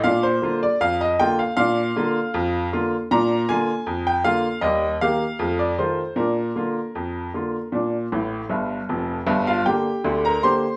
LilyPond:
<<
  \new Staff \with { instrumentName = "Upright piano" } { \time 2/4 \key bes \major \tempo 4 = 78 f''16 c''8 d''16 f''16 ees''16 g''16 f''16 | f''2 | bes''8 aes''8. g''16 f''8 | ees''8 f''8. d''16 c''8 |
bes'2~ | bes'4 r4 | r16 <f' f''>16 <g' g''>8. <bes' bes''>16 <c'' c'''>8 | }
  \new Staff \with { instrumentName = "Upright piano" } { \clef bass \time 2/4 \key bes \major <bes, d'>8 <d bes f'>8 f,8 <d bes f'>8 | <bes, d'>8 <d bes f'>8 f,8 <d bes f'>8 | <bes, d'>8 <d bes f'>8 f,8 <d bes f'>8 | <ees, g>8 <ees bes g'>8 <f, a>8 <ees a f'>8 |
<bes, d'>8 <d bes f'>8 f,8 <d bes f'>8 | <bes, d'>8 <a,, a,>8 <g,, g,>8 <f,, f,>8 | <g,, g,>8 <d bes>8 <d, d>8 <d bes g'>8 | }
>>